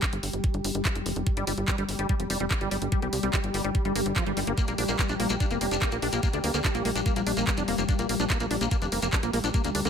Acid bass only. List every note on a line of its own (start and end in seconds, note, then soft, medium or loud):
1.37 1.45 G3 medium
1.47 1.53 G3 medium
1.68 1.76 G3 medium
1.78 1.84 G3 medium
1.99 2.07 G3 medium
2.09 2.15 G3 medium
2.30 2.38 G3 medium
2.40 2.46 G3 medium
2.61 2.69 G3 medium
2.71 2.77 G3 medium
2.92 3.00 G3 medium
3.02 3.08 G3 medium
3.23 3.31 G3 medium
3.33 3.39 G3 medium
3.54 3.62 G3 medium
3.64 3.70 G3 medium
3.85 3.93 G3 medium
3.95 4.01 A#3 medium
4.16 4.24 F3 loud
4.26 4.32 G3 medium
4.37 4.40 G3 medium
4.47 4.53 A#3 medium
4.58 4.66 A#3 medium
4.68 4.73 A#3 medium
4.78 4.84 D4 medium
4.89 4.97 A#3 medium
4.99 5.04 A#3 medium
5.09 5.15 D4 medium
5.20 5.28 A#3 medium
5.30 5.35 A#3 medium
5.40 5.46 D4 medium
5.51 5.59 A#3 medium
5.61 5.66 A#3 medium
5.71 5.77 D4 medium
5.82 5.90 A#3 medium
5.92 5.97 A#3 medium
6.02 6.08 D4 medium
6.13 6.21 A#3 medium
6.23 6.28 A#3 medium
6.33 6.39 D4 medium
6.44 6.52 A#3 medium
6.54 6.59 A#3 medium
6.64 6.70 D4 medium
6.75 6.83 A#3 medium
6.85 6.91 A#3 medium
6.95 7.01 D4 medium
7.06 7.14 A#3 medium
7.16 7.22 A#3 medium
7.27 7.32 D4 medium
7.37 7.45 A#3 medium
7.47 7.53 A#3 medium
7.58 7.63 D4 medium
7.68 7.76 A#3 medium
7.78 7.84 A#3 medium
7.89 7.94 D4 medium
7.99 8.07 A#3 medium
8.09 8.15 A#3 medium
8.20 8.25 D4 medium
8.30 8.38 A#3 medium
8.40 8.46 A#3 medium
8.51 8.56 D4 medium
8.61 8.69 A#3 medium
8.71 8.77 A#3 medium
8.82 8.87 D4 medium
8.92 9.00 A#3 medium
9.02 9.08 A#3 medium
9.13 9.18 D4 medium
9.23 9.31 A#3 medium
9.33 9.39 A#3 medium
9.44 9.49 D4 medium
9.54 9.62 A#3 medium
9.64 9.70 A#3 medium
9.75 9.80 D4 medium
9.85 9.90 A#3 medium